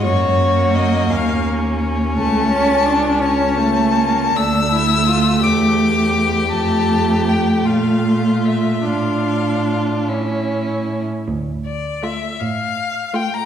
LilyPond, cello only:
\new Staff \with { instrumentName = "Cello" } { \clef bass \time 6/8 \key ges \lydian \tempo 4. = 54 ges,4. ees,4. | \key d \minor cis,2. | d,4. e,4. | f,4. bes,4. |
a,4. a,4~ a,16 r16 | d,4. a,4. | }